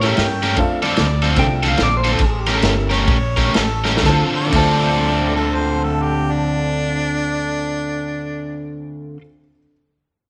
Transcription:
Already playing: upright bass A2
0.02 overdriven electric guitar A3 C#4 G4 A#4, upright piano A#3 C#4 E4 G4 A4, snare, ride
0.07 clean electric guitar E5
0.17 upright bass G2, harmonica G5, snare, ride
0.43 overdriven electric guitar A3 C#4 G4 A#4, snare, ride
0.57 upright piano A3 C4 D4 F4 A4, harmonica F5, kick, ride
0.82 overdriven electric guitar D3 C4 F4 A4, harmonica D5, snare, ride
0.97 upright bass D2, harmonica D5, snare, ride
1.22 overdriven electric guitar D3 C4 F4 A4, snare, ride
1.36 upright bass C2, upright piano A3 C4 D4 F4 A4, clean electric guitar G5, kick, snare, ride
1.63 overdriven electric guitar D3 C4 F4 A4, snare, ride
1.68 clean electric guitar F5
1.78 upright bass A#1, snare, ride
1.83 clean electric guitar D5
1.97 clean electric guitar C5
2.04 overdriven electric guitar D3 C4 F4 A4, snare, ride
2.12 clean electric guitar A4
2.19 upright bass A1, kick, snare, ride
2.25 clean electric guitar G#4
2.39 clean electric guitar G4
2.46 overdriven electric guitar A3 C#4 G4 A#4, snare, ride
2.54 clean electric guitar A4
2.62 upright bass G1, upright piano A#3 C#4 E4 G4 A4, snare, ride
2.90 overdriven electric guitar A3 C#4 G4 A#4, harmonica C#5, snare, ride
3.08 upright bass A#1, kick, ride
3.37 overdriven electric guitar A3 C#4 G4 A#4, kick, snare, ride
3.54 upright bass A1, harmonica A4, snare, ride
3.84 overdriven electric guitar A3 C#4 G4 A#4, snare
3.97 upright piano D2 D3, snare
4.01 upright bass D2, overdriven electric guitar D3 C4 F4 A4, kick, snare
4.06 upright piano F4 C5, clean electric guitar A4
4.36 harmonica D5
4.46 upright piano D2 D3
4.51 upright bass D2, overdriven electric guitar D3 C4 F4, upright piano E5, kick, crash
4.55 upright piano F4 C5, overdriven electric guitar A4, clean electric guitar A4
4.60 upright piano G5
4.67 upright piano C6
4.76 upright piano E6
4.87 upright piano G6
4.97 upright piano C7
5.09 upright piano E7
5.36 harmonica A4
5.55 harmonica C5
5.84 harmonica A4
6.02 harmonica G4
6.33 harmonica D4

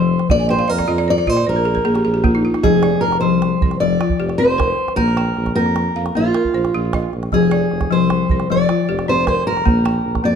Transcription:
Already playing: tuba F1, balafon F3 C5, steel-string acoustic guitar C5
0.19 calabash click
0.29 tuba A#1, balafon A#3, steel-string acoustic guitar D5, calabash thump
0.39 balafon G#5
0.49 steel-string acoustic guitar C5, balafon G5
0.59 balafon F5, calabash click
0.68 tuba F2, steel-string acoustic guitar A#4, balafon D#5, calabash click
0.78 balafon D5, calabash thump, calabash click
0.88 tuba F2, balafon F4 D#5
0.98 balafon D5, calabash click
1.08 balafon C5, steel-string acoustic guitar D5
1.18 balafon D5, calabash click
1.27 tuba A#2, balafon F4 D#5, steel-string acoustic guitar C5, calabash thump
1.36 balafon D5, calabash click
1.47 tuba A#1, steel-string acoustic guitar A#4, balafon C5
1.56 balafon A#4
1.65 balafon G#4
1.75 balafon A#4, calabash thump
1.85 tuba A#1, balafon A#3 G#4
1.95 balafon G4, calabash click
2.05 tuba A#1, balafon G#4
2.14 balafon G4, calabash click
2.24 balafon A#3 F4, calabash thump
2.35 balafon D#4
2.45 balafon F4
2.54 balafon D#4, calabash click
2.63 tuba F1, balafon F3, steel-string acoustic guitar G#4, calabash thump
2.73 calabash click
2.83 balafon D5, calabash click
3.01 tuba F1, steel-string acoustic guitar A#4, calabash click
3.12 calabash click
3.21 tuba C2, balafon F3, steel-string acoustic guitar C5
3.32 calabash click
3.42 calabash click
3.61 tuba C2, balafon C5, calabash thump
3.71 calabash click
3.80 tuba F1, balafon F3, steel-string acoustic guitar D5
4.01 balafon F4, calabash click
4.10 calabash thump
4.20 tuba F1, balafon G4, calabash click
4.29 calabash click
4.38 tuba F1, balafon C4, steel-string acoustic guitar C5
4.58 balafon A#4, calabash thump, calabash click
4.79 calabash click
4.88 calabash click
4.96 tuba A#1, balafon A#3, steel-string acoustic guitar A#4, calabash thump
5.08 calabash click
5.17 balafon G5, calabash click
5.37 tuba A#1, calabash click
5.46 calabash thump, calabash click
5.55 tuba F2, balafon A#3, steel-string acoustic guitar A#4
5.66 calabash click
5.76 calabash click
5.95 tuba F2, balafon F5
6.06 calabash click
6.15 tuba A#1, balafon A#3, steel-string acoustic guitar F4
6.34 balafon A#4, calabash click
6.45 calabash thump
6.54 tuba A#1, balafon C5, calabash click
6.65 calabash click
6.74 tuba A#1, balafon F4
6.93 balafon D#5, calabash thump, calabash click
7.13 tuba A#1, calabash click
7.23 calabash click
7.32 tuba F1, balafon F3, steel-string acoustic guitar G#4, calabash thump
7.42 calabash click
7.51 balafon D5, calabash click
7.71 tuba F1, calabash click
7.81 calabash thump, calabash click
7.91 tuba C2, balafon F3, steel-string acoustic guitar C5
8.00 calabash click
8.10 calabash click
8.29 tuba C2, balafon C5, calabash thump
8.40 calabash click
8.49 tuba F1, balafon F3, steel-string acoustic guitar D5
8.69 balafon F4, calabash click
8.88 tuba F1, balafon G4, calabash click
8.99 calabash click
9.08 tuba F1, balafon C4, steel-string acoustic guitar C5
9.27 balafon A#4, steel-string acoustic guitar C5, calabash thump, calabash click
9.47 tuba F1, steel-string acoustic guitar A#4, calabash click
9.57 calabash click
9.65 tuba A#1, balafon A#3, calabash thump
9.85 balafon G5, calabash click
10.05 tuba A#1
10.15 calabash thump, calabash click
10.24 tuba F2, balafon A#3, steel-string acoustic guitar D5

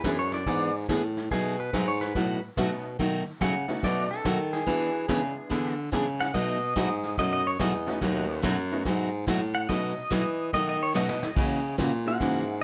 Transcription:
Already playing: pedal steel guitar B4
0.04 baritone saxophone F#2, steel-string acoustic guitar E3 B3 D4 G#4, honky-tonk piano G#3 B3 D4 E4 G#4, kick, snare, hi-hat pedal
0.19 pedal steel guitar C#5
0.32 pedal steel guitar D5, snare
0.46 baritone saxophone G#2, steel-string acoustic guitar E3 B3 D4 G#4, brush sweep, kick, snare
0.89 baritone saxophone A2, steel-string acoustic guitar E3 B3 D4 G#4, kick, snare, hi-hat pedal
1.17 snare
1.31 baritone saxophone B2, steel-string acoustic guitar B2 F#3 A3 D#4 F#4, pedal steel guitar G#4, brush sweep, kick, snare
1.60 pedal steel guitar B4
1.73 baritone saxophone G#2, steel-string acoustic guitar B2 F#3 A3 D#4 F#4, kick, snare, hi-hat pedal
1.88 pedal steel guitar C#5
2.01 pedal steel guitar B4, snare
2.15 baritone saxophone A2, steel-string acoustic guitar B2 F#3 A3 D#4 F#4, brush sweep, kick, snare
2.43 baritone saxophone A2
2.57 baritone saxophone B2, steel-string acoustic guitar B2 F#3 A3 D#4 F#4, honky-tonk piano A3 B3 C#4 D#4 F#4, kick, snare, hi-hat pedal
2.99 steel-string acoustic guitar B2 F#3 A3 D#4 F#4, baritone saxophone D#3, brush sweep, kick, snare
3.26 baritone saxophone D#3
3.41 steel-string acoustic guitar B2 F#3 A3 D#4 F#4, baritone saxophone C#3, pedal steel guitar F#5, kick, snare, hi-hat pedal
3.68 baritone saxophone C#3, honky-tonk piano A3 B3 C#4 D#4 F#4, snare
3.83 baritone saxophone B2, steel-string acoustic guitar B2 F#3 A3 D#4 F#4, pedal steel guitar D5, brush sweep, kick, snare
4.11 pedal steel guitar A4
4.25 steel-string acoustic guitar B2 F#3 A3 D#4 F#4, baritone saxophone D#3, kick, snare, hi-hat pedal
4.53 pedal steel guitar G#4, snare
4.66 steel-string acoustic guitar E3 B3 D4 G#4, baritone saxophone E3, honky-tonk piano G#3 B3 D4 E4 F#4, brush sweep, kick, snare
5.08 baritone saxophone C#3, steel-string acoustic guitar E3 B3 D4 G#4, honky-tonk piano G#3 B3 D4 E4 G#4, kick, snare, hi-hat pedal
5.50 baritone saxophone D3, steel-string acoustic guitar E3 B3 D4 G#4, brush sweep, kick, snare
5.92 baritone saxophone C#3, steel-string acoustic guitar E3 B3 D4 G#4, kick, snare, hi-hat pedal
6.20 pedal steel guitar F#5, snare
6.34 baritone saxophone B2, steel-string acoustic guitar B2 F#3 A3 D#4 F#4, pedal steel guitar D#5, brush sweep, kick, snare
6.76 baritone saxophone G#2, steel-string acoustic guitar B2 F#3 A3 D#4 F#4, kick, snare, hi-hat pedal
7.03 snare
7.18 baritone saxophone F#2, steel-string acoustic guitar B2 F#3 A3 D#4 F#4, pedal steel guitar D#5, brush sweep, kick, snare
7.33 pedal steel guitar D#5
7.47 pedal steel guitar C#5
7.59 baritone saxophone E2, steel-string acoustic guitar B2 F#3 A3 D#4 F#4, pedal steel guitar D#5, kick, snare, hi-hat pedal
7.87 honky-tonk piano A3 B3 C#4 D#4 F#4, snare
8.01 baritone saxophone D#2, steel-string acoustic guitar B2 F#3 A3 D#4 F#4, brush sweep, kick, snare
8.42 baritone saxophone F#2, steel-string acoustic guitar B2 F#3 A3 D#4 F#4, kick, snare, hi-hat pedal
8.72 honky-tonk piano A3 B3 C#4 D#4 F#4
8.85 baritone saxophone G#2, steel-string acoustic guitar B2 F#3 A3 D#4 F#4, brush sweep, kick, snare
9.27 baritone saxophone A2, steel-string acoustic guitar B2 F#3 A3 D#4 F#4, kick, snare, hi-hat pedal
9.55 pedal steel guitar F#5
9.69 steel-string acoustic guitar B2 F#3 A3 D#4 F#4, baritone saxophone B2, honky-tonk piano A3 B3 C#4 D#4 F#4, pedal steel guitar D#5, brush sweep, kick, snare
9.97 baritone saxophone B2
10.10 steel-string acoustic guitar B2 F#3 A3 D#4 F#4, baritone saxophone E3, kick, snare, hi-hat pedal
10.53 steel-string acoustic guitar B2 F#3 A3 D#4 F#4, baritone saxophone D#3, pedal steel guitar D#5, brush sweep, kick, snare
10.69 pedal steel guitar D#5
10.83 pedal steel guitar C#5
10.94 steel-string acoustic guitar B2 F#3 A3 D#4 F#4, baritone saxophone B2, honky-tonk piano A3 B3 C#4 D#4 F#4, pedal steel guitar D#5, snare, hi-hat pedal
11.09 snare
11.23 snare
11.36 baritone saxophone C#3, steel-string acoustic guitar C#3 E3 A#3 C#4 F#4, brush sweep, kick, snare, crash
11.78 baritone saxophone A#2, steel-string acoustic guitar C#3 E3 A#3 C#4 F#4, kick, snare, hi-hat pedal
12.06 honky-tonk piano G#3 A#3 C#4 E4 F#4, pedal steel guitar F#5
12.20 baritone saxophone G#2, steel-string acoustic guitar C#3 E3 A#3 C#4 F#4, brush sweep, kick, snare

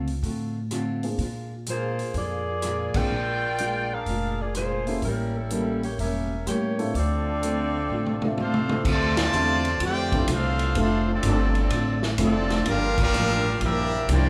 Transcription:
Already playing: upright bass C#2, steel-string acoustic guitar A3 C4 F4
0.07 open hi-hat
0.23 upright bass A2, steel-string acoustic guitar D3 A3 C4 F4, kick, open hi-hat
0.71 steel-string acoustic guitar D3 A3 C4 F4, cross-stick, closed hi-hat
1.03 grand piano A#3 C4 D4 F4 G#4, open hi-hat
1.18 upright bass A#2, steel-string acoustic guitar A#2 G#3 D4 F4, kick, open hi-hat
1.66 steel-string acoustic guitar A#2 G#3 D4 F4, closed hi-hat
1.71 saxophone section A#3 F4 G#4 C5
1.99 open hi-hat
2.14 upright bass F2, steel-string acoustic guitar A#2 G#3 D4 F4, saxophone section A#3 F4 D5, kick, open hi-hat
2.18 saxophone section G#4
2.62 steel-string acoustic guitar A#2 G#3 D4 F4, cross-stick, closed hi-hat
2.94 grand piano A#3 C4 D4 F4 G#4, saxophone section F4 A#4 D5 G5, muted upright bass stroke, kick, crash
3.10 upright bass A#1, steel-string acoustic guitar A#2 G#3 D4 F4
3.58 steel-string acoustic guitar A#2 G#3 D4 F4, closed hi-hat
3.93 saxophone section D4 G#4 A#4 F5
4.06 upright bass F1, steel-string acoustic guitar A#2 G#3 D4, kick, open hi-hat
4.10 steel-string acoustic guitar F4
4.41 saxophone section A#3 F4 G#4 D5
4.55 steel-string acoustic guitar A#2 G#3 D4 F4, saxophone section A#3 F4 G#4 C5, cross-stick, closed hi-hat
4.87 grand piano A#3 C#4 E4 G4 A4, open hi-hat
5.02 upright bass A1, steel-string acoustic guitar A2 G3, saxophone section G3 C#4 E4 A#4, kick, open hi-hat
5.06 steel-string acoustic guitar A#3 C#4
5.37 saxophone section G3 C#4 E4 A4
5.50 steel-string acoustic guitar A2 G3 A#3 C#4, grand piano A#3 C#4 E4 G4 A4, closed hi-hat
5.83 saxophone section A#3 E4 G4 C#5, open hi-hat
5.98 upright bass E1, steel-string acoustic guitar A2 G3 A#3 C#4, saxophone section C#4 G4 A#4 E5, kick, open hi-hat
6.46 upright bass A2, steel-string acoustic guitar A2 G3 A#3 C#4, saxophone section A#3 E4 G4 C#5, cross-stick, closed hi-hat
6.78 grand piano C4 D4 E4 F4 A4, open hi-hat
6.94 upright bass D2, steel-string acoustic guitar D3 A3 C4 F4, trombone section F3 A3 D4, saxophone section C4 F4 A4 D5, kick, open hi-hat
7.43 steel-string acoustic guitar D3 A3 C4 F4, closed hi-hat
7.90 upright bass A1, steel-string acoustic guitar D3 A3 C4 F4
8.06 mid tom
8.22 grand piano C4 D4 F4 A4 E5, mid tom
8.38 steel-string acoustic guitar D3 A3 C4 F4, trombone section A3 C4 F4, trumpet section D4 A4 C5 F5, mid tom
8.54 mid tom
8.69 grand piano C4 D4 E4 F4 A4, mid tom
8.85 upright bass D2, trombone section C3 F3 A3, steel-string acoustic guitar D3 A3 C4 F4, kick, crash
8.90 trumpet section F4 C5 D5 A5
9.17 trombone section C3 A3 F4, snare, ride
9.23 trumpet section F4 C5 D5 A5
9.33 upright bass E2, steel-string acoustic guitar D3 A3 C4 F4, grand piano C4 D4 E4 F4 A4, hi-hat pedal
9.65 ride
9.80 upright bass F2, steel-string acoustic guitar D3 A3 C4 F4, trombone section A3 C4 G4, kick, ride
9.85 trumpet section F4 C5 D5 G5
10.12 grand piano C4 D4 E4 F4 A4, kick, ride
10.28 upright bass C2, steel-string acoustic guitar D3 A3 C4 F4, trombone section A3 C4 F4, kick, hi-hat pedal, ride
10.33 trumpet section D4 A4 C5 F5
10.59 ride
10.75 upright bass F1, steel-string acoustic guitar D3 A3 C4, trombone section A3 C4 F4, grand piano C4 D4 F4 A4 E5, kick, ride
10.79 trumpet section D4 A4 C5 F5, steel-string acoustic guitar F4
11.10 trombone section F3 A3 D4, trumpet section C4 F4 A4 D5
11.23 upright bass G1, steel-string acoustic guitar D3 A3 C4, kick, hi-hat pedal, ride
11.27 steel-string acoustic guitar F4
11.55 trombone section F3 A3 D4, ride
11.60 trumpet section C4 F4 A4 D5
11.70 upright bass A1, steel-string acoustic guitar D3 A3 C4 F4, kick, ride
12.03 snare
12.18 upright bass F1, steel-string acoustic guitar D3 A3 C4 F4, trombone section F3 A3 D4, grand piano C4 D4 E4 F4 A4, kick, hi-hat pedal, ride
12.23 trumpet section C4 F4 A4 D5
12.50 snare, ride
12.66 upright bass G1, steel-string acoustic guitar G2 F3, grand piano A#3 D4 F4 G4 A#4, trombone section A#3 D4 F4, trumpet section A#4, kick, ride
12.70 steel-string acoustic guitar A#3 D4, trumpet section D4 G4 F5
12.98 trombone section A#3 D4 F4, trumpet section F5, kick, crash
13.02 trumpet section D4 G4 A#4
13.13 upright bass A1, steel-string acoustic guitar G2 F3 A#3 D4, hi-hat pedal
13.61 upright bass A#1, steel-string acoustic guitar G2 F3 A#3 D4, trombone section F3 A#3 E4, trumpet section D4 G4 A#4 E5, kick, ride
14.08 upright bass C2, steel-string acoustic guitar G2 F3 A#3 D4, trombone section F3 A#3 D4, trumpet section A#3 F4 G4 D5, kick, hi-hat pedal, ride

